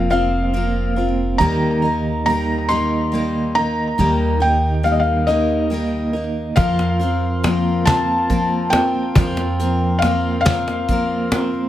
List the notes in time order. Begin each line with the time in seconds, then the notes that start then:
Already playing: F1 F3 A#3 C4 F4
0.10 F3 C4 F4 A#4 F5
0.54 F3 A#3 C4 F4 A#4
0.96 C4 F4 A#4
1.38 D#2 D#3 G3 A#3 D#4 G4 A#4 A#5
1.82 A#3 D#4 A#4
2.26 G3 A#3 D#4 A#4 A#5
2.69 D#3 G3 A#3 D#4 A#4 C6
3.12 G3 A#3 D#4 A#4
3.55 A#3 D#4 A#4 A#5
3.98 D#2 D#3 G3 A#3 D#4 G4 A#4
4.40 A#3 D#4 A#4 G5
4.83 G3 A#3 D#4 A#4 F5
4.92 D#5
5.00 F5
5.27 D#3 G3 A#3 D#4 A#4 D#5
5.70 G3 A#3 D#4 A#4
6.13 A#3 D#4 A#4
6.56 F2 F3 C4 F4 A#4 F5 C6, cajon bass, kick, closed hi-hat
6.79 cajon slap
6.99 C4 F4 A#4, closed hi-hat
7.44 F3 A#3 C4 F4 A#4, cajon slap, closed hi-hat
7.85 F3 C4 F4 A#4 A5, cajon bass, snare, closed hi-hat
8.30 F3 A#3 C4 F4 A#4, kick, closed hi-hat
8.70 F4 A#4 G5, cajon slap, closed hi-hat
8.75 C4
8.95 cajon slap
9.15 F2 F3 C4 F4 A#4, cajon bass, kick, closed hi-hat
9.37 cajon slap
9.60 C4 F4 A#4, closed hi-hat
9.99 F5, cajon slap
10.03 F3 A#3 C4 F4 A#4, closed hi-hat
10.41 F5
10.45 F3 C4 F4 A#4, cajon bass, snare, closed hi-hat
10.68 cajon slap
10.88 F3 A#3 C4 F4, kick, closed hi-hat
10.93 A#4
11.31 C4 F4 A#4, cajon slap, closed hi-hat
11.53 cajon slap